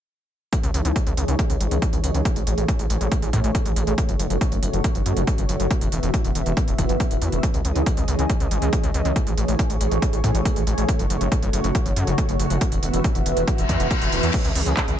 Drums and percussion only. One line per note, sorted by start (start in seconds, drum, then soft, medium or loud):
0.53 kick loud
0.53 closed hi-hat medium
0.63 closed hi-hat medium
0.74 closed hi-hat medium
0.85 closed hi-hat medium
0.96 kick loud
0.96 closed hi-hat medium
1.07 closed hi-hat soft
1.17 closed hi-hat medium
1.28 closed hi-hat soft
1.39 kick loud
1.39 closed hi-hat medium
1.50 closed hi-hat soft
1.61 closed hi-hat medium
1.71 closed hi-hat soft
1.82 kick loud
1.82 closed hi-hat medium
1.93 closed hi-hat soft
2.04 closed hi-hat medium
2.15 closed hi-hat medium
2.25 kick loud
2.25 closed hi-hat medium
2.36 closed hi-hat soft
2.47 closed hi-hat medium
2.58 closed hi-hat medium
2.68 kick loud
2.68 closed hi-hat medium
2.79 closed hi-hat soft
2.90 closed hi-hat medium
3.01 closed hi-hat soft
3.12 kick loud
3.12 closed hi-hat medium
3.22 closed hi-hat soft
3.33 kick medium
3.33 closed hi-hat medium
3.44 closed hi-hat soft
3.55 kick loud
3.55 closed hi-hat medium
3.66 closed hi-hat soft
3.76 closed hi-hat medium
3.87 closed hi-hat soft
3.98 kick loud
3.98 closed hi-hat medium
4.09 closed hi-hat soft
4.20 closed hi-hat medium
4.30 closed hi-hat soft
4.41 kick loud
4.41 closed hi-hat medium
4.52 closed hi-hat soft
4.63 closed hi-hat medium
4.73 closed hi-hat soft
4.84 kick loud
4.84 closed hi-hat medium
4.95 closed hi-hat soft
5.06 closed hi-hat medium
5.17 closed hi-hat soft
5.27 kick loud
5.27 closed hi-hat medium
5.38 closed hi-hat soft
5.49 closed hi-hat medium
5.60 closed hi-hat soft
5.71 kick loud
5.71 closed hi-hat medium
5.81 closed hi-hat soft
5.92 closed hi-hat medium
6.03 closed hi-hat soft
6.14 kick loud
6.14 closed hi-hat medium
6.25 closed hi-hat soft
6.35 closed hi-hat medium
6.46 closed hi-hat soft
6.57 kick loud
6.57 closed hi-hat medium
6.68 closed hi-hat soft
6.78 kick medium
6.78 closed hi-hat medium
6.89 closed hi-hat soft
7.00 kick loud
7.00 closed hi-hat medium
7.11 closed hi-hat soft
7.22 closed hi-hat medium
7.32 closed hi-hat soft
7.43 kick loud
7.43 closed hi-hat medium
7.54 closed hi-hat soft
7.65 closed hi-hat medium
7.76 closed hi-hat soft
7.86 kick loud
7.86 closed hi-hat medium
7.97 closed hi-hat soft
8.08 closed hi-hat medium
8.19 closed hi-hat soft
8.30 kick loud
8.30 closed hi-hat medium
8.40 closed hi-hat soft
8.51 closed hi-hat medium
8.62 closed hi-hat soft
8.73 kick loud
8.73 closed hi-hat medium
8.84 closed hi-hat soft
8.94 closed hi-hat medium
9.05 closed hi-hat soft
9.16 kick loud
9.16 closed hi-hat medium
9.27 closed hi-hat soft
9.38 closed hi-hat medium
9.48 closed hi-hat soft
9.59 kick loud
9.59 closed hi-hat medium
9.70 closed hi-hat soft
9.81 closed hi-hat medium
9.92 closed hi-hat soft
10.02 kick loud
10.02 closed hi-hat medium
10.13 closed hi-hat soft
10.24 kick medium
10.24 closed hi-hat medium
10.35 closed hi-hat soft
10.45 kick loud
10.45 closed hi-hat medium
10.56 closed hi-hat soft
10.67 closed hi-hat medium
10.78 closed hi-hat soft
10.89 kick loud
10.89 closed hi-hat medium
10.99 closed hi-hat medium
11.10 closed hi-hat medium
11.21 closed hi-hat medium
11.32 kick loud
11.32 closed hi-hat medium
11.43 closed hi-hat medium
11.53 closed hi-hat medium
11.64 closed hi-hat soft
11.75 kick loud
11.75 closed hi-hat medium
11.86 closed hi-hat medium
11.96 closed hi-hat medium
12.07 closed hi-hat medium
12.18 kick loud
12.18 closed hi-hat medium
12.29 closed hi-hat soft
12.40 closed hi-hat medium
12.50 closed hi-hat soft
12.61 kick loud
12.61 closed hi-hat medium
12.72 closed hi-hat medium
12.83 closed hi-hat medium
12.94 closed hi-hat medium
13.04 kick loud
13.04 closed hi-hat medium
13.15 closed hi-hat medium
13.26 closed hi-hat medium
13.37 closed hi-hat soft
13.48 kick loud
13.48 closed hi-hat medium
13.58 closed hi-hat soft
13.69 kick medium
13.69 closed hi-hat medium
13.80 closed hi-hat medium
13.91 kick loud
13.91 closed hi-hat medium
14.02 closed hi-hat medium
14.12 closed hi-hat medium
14.23 closed hi-hat medium
14.34 kick loud
14.34 closed hi-hat medium
14.34 crash medium
14.45 closed hi-hat medium
14.55 open hi-hat loud
14.66 closed hi-hat medium
14.77 kick loud
14.77 clap loud
14.77 closed hi-hat medium
14.88 closed hi-hat medium